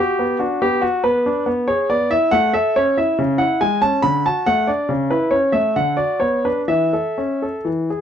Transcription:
0.00 0.21 F#4 soft
0.00 0.37 G4 medium
0.19 0.42 B3 soft
0.39 0.63 D4 soft
0.39 0.59 F#4 medium
0.62 0.84 B3 soft
0.62 0.81 G4 medium
0.81 1.02 F#4 medium
1.04 1.27 B3 soft
1.04 1.43 B4 medium
1.26 1.47 D4 soft
1.46 1.67 B3 medium
1.68 1.90 G#4 soft
1.68 1.87 C#5 medium
1.90 2.12 B3 soft
1.90 2.11 D5 medium
2.11 2.32 E4 soft
2.11 2.32 E5 medium
2.31 2.53 A3 medium
2.31 2.51 F#5 medium
2.53 2.77 A4 soft
2.53 2.75 E5 medium
2.76 2.99 C#4 soft
2.76 2.97 C#5 medium
2.98 3.19 E4 soft
2.98 3.16 E5 medium
3.18 3.39 C#3 medium
3.38 3.61 E4 soft
3.38 3.60 F#5 medium
3.61 3.84 G#3 soft
3.61 3.80 G#5 medium
3.82 4.04 C#4 soft
3.82 4.04 A5 medium
4.02 4.25 D3 medium
4.02 4.25 B5 medium
4.26 4.49 F#4 soft
4.26 4.45 A5 medium
4.46 4.69 A3 soft
4.46 4.68 F#5 medium
4.67 4.90 D4 soft
4.67 4.89 D5 medium
4.89 5.10 C#3 medium
5.10 5.34 E4 soft
5.10 5.32 B4 medium
5.31 5.55 C#4 soft
5.31 5.54 C#5 medium
5.52 5.76 A3 soft
5.52 5.73 E5 medium
5.76 5.98 D3 soft
5.76 5.96 F#5 medium
5.97 6.22 F#4 soft
5.97 6.18 D5 medium
6.20 6.46 B3 soft
6.20 6.45 C#5 medium
6.45 6.70 D4 soft
6.45 6.60 B4 medium
6.68 6.93 E3 soft
6.68 7.55 E5 medium
6.93 7.19 A4 soft
7.18 7.43 C#4 soft
7.42 7.66 A4 soft
7.65 7.88 E3 soft
7.90 8.01 G#4 soft

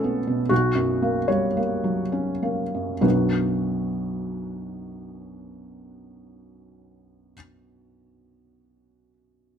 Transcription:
0.00 0.46 B1 soft
0.00 0.27 B2 soft
0.00 0.53 A3 soft
0.00 0.04 B3 soft
0.00 0.41 B3 soft
0.00 0.17 C#4 soft
0.00 0.50 A4 medium
0.00 0.53 B4 medium
0.27 0.51 B2 soft
0.49 2.99 B1 soft
0.49 1.29 F#4 medium
0.75 1.18 F#2 soft
1.02 1.46 A#3 soft
1.28 1.57 G3 soft
1.28 3.03 C#5 soft
1.57 2.02 A#3 soft
1.84 2.31 F#3 soft
2.12 2.61 C#4 soft
2.43 2.92 A#3 soft
2.74 3.00 F#2 soft
3.01 7.33 B1 soft
3.01 7.34 F#2 soft
3.01 7.34 F#3 soft
3.01 7.34 B3 soft
3.01 7.35 D4 soft
3.01 7.34 F#4 soft
3.01 7.34 B4 soft

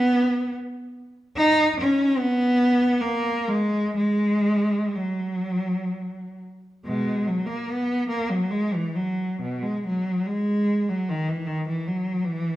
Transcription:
0.00 0.54 B3 loud
1.36 1.74 D#4 loud
1.80 2.19 C#4 medium
2.17 3.03 B3 loud
3.01 3.47 A#3 medium
3.48 3.95 G#3 medium
3.96 4.93 G#3 medium
4.96 6.41 F#3 medium
6.85 7.24 B2 medium
6.85 7.24 G#3 medium
7.27 7.48 F#3 medium
7.46 7.68 A#3 medium
7.69 8.10 B3 medium
8.09 8.30 A#3 medium
8.30 8.51 F#3 medium
8.51 8.73 G#3 medium
8.74 8.96 E3 medium
8.95 9.41 F#3 medium
9.42 9.64 B2 medium
9.62 9.85 G#3 medium
9.87 10.27 F#3 medium
10.27 10.86 G#3 medium
10.89 11.07 F#3 medium
11.09 11.27 D#3 medium
11.29 11.46 E3 medium
11.47 11.64 D#3 medium
11.69 11.85 E3 medium
11.87 12.23 F#3 medium
12.25 12.56 E3 medium

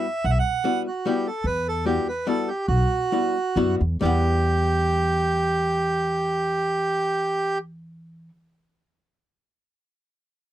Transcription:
0.00 0.25 E5 medium
0.24 0.38 B1 medium
0.24 0.31 F#5 loud
0.30 0.38 E5 loud
0.39 0.83 F#5 loud
0.64 0.86 G3 medium
0.64 0.86 B3 medium
0.64 0.86 E4 soft
0.64 0.86 F#4 medium
0.87 1.06 F#4 medium
1.06 1.27 G3 medium
1.06 1.27 B3 medium
1.06 1.27 E4 medium
1.06 1.27 F#4 medium
1.06 1.27 G4 medium
1.27 1.46 A4 medium
1.44 1.97 E2 medium
1.44 1.67 B4 loud
1.68 1.85 A4 medium
1.85 2.07 G3 medium
1.85 2.07 B3 soft
1.85 2.07 E4 soft
1.85 2.07 F#4 medium
1.85 2.08 G4 medium
2.08 2.27 B4 medium
2.27 2.48 G3 medium
2.27 2.48 B3 soft
2.27 2.48 E4 medium
2.27 2.48 F#4 medium
2.27 2.49 A4 medium
2.48 2.66 G4 medium
2.68 2.83 B1 medium
2.68 3.75 F#4 loud
3.12 3.35 G3 medium
3.12 3.35 B3 soft
3.12 3.35 E4 medium
3.12 3.35 F#4 medium
3.56 3.77 F#2 medium
3.56 3.80 G3 medium
3.56 3.80 B3 medium
3.56 3.80 E4 medium
3.56 3.80 F#4 medium
3.81 4.00 E2 medium
4.01 8.29 E2 medium
4.01 8.28 G3 medium
4.01 8.29 B3 medium
4.01 8.29 E4 medium
4.01 7.58 G4 loud
4.05 8.30 F#5 medium

